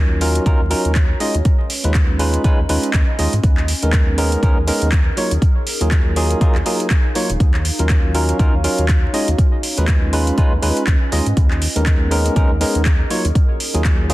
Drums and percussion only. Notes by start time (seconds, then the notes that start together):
0.21 open hi-hat
0.35 closed hi-hat
0.46 kick, closed hi-hat
0.71 open hi-hat
0.85 closed hi-hat
0.95 kick, clap, closed hi-hat
1.20 open hi-hat
1.35 closed hi-hat
1.45 kick, closed hi-hat
1.70 open hi-hat
1.84 closed hi-hat
1.94 kick, clap, closed hi-hat
2.19 open hi-hat
2.34 closed hi-hat
2.44 kick, closed hi-hat
2.69 open hi-hat
2.83 closed hi-hat
2.93 kick, clap, closed hi-hat
3.19 open hi-hat
3.33 closed hi-hat
3.44 kick, closed hi-hat
3.57 clap
3.68 open hi-hat
3.83 closed hi-hat
3.93 kick, clap, closed hi-hat
4.18 open hi-hat
4.32 closed hi-hat
4.43 kick, closed hi-hat
4.68 open hi-hat
4.82 closed hi-hat
4.92 kick, clap, closed hi-hat
5.17 open hi-hat
5.31 closed hi-hat
5.42 kick, closed hi-hat
5.67 open hi-hat
5.81 closed hi-hat
5.91 kick, clap, closed hi-hat
6.16 open hi-hat
6.30 closed hi-hat
6.41 kick, closed hi-hat
6.55 clap
6.66 open hi-hat
6.80 closed hi-hat
6.90 kick, clap, closed hi-hat
7.15 open hi-hat
7.30 closed hi-hat
7.40 kick, closed hi-hat
7.54 clap
7.65 open hi-hat
7.79 closed hi-hat
7.89 kick, clap, closed hi-hat
8.15 open hi-hat
8.29 closed hi-hat
8.39 kick, closed hi-hat
8.64 open hi-hat
8.78 closed hi-hat
8.88 kick, clap, closed hi-hat
9.14 open hi-hat
9.28 closed hi-hat
9.39 kick, closed hi-hat
9.63 open hi-hat
9.78 closed hi-hat
9.88 kick, clap, closed hi-hat
10.13 open hi-hat
10.27 closed hi-hat
10.38 kick, closed hi-hat
10.63 open hi-hat
10.77 closed hi-hat
10.87 kick, clap, closed hi-hat
11.12 open hi-hat
11.26 closed hi-hat
11.37 kick, closed hi-hat
11.51 clap
11.62 open hi-hat
11.76 closed hi-hat
11.86 kick, clap, closed hi-hat
12.11 open hi-hat
12.26 closed hi-hat
12.36 kick, closed hi-hat
12.61 open hi-hat
12.75 closed hi-hat
12.85 kick, clap, closed hi-hat
13.10 open hi-hat
13.25 closed hi-hat
13.35 kick, closed hi-hat
13.60 open hi-hat
13.74 closed hi-hat
13.84 kick, clap, closed hi-hat
14.10 open hi-hat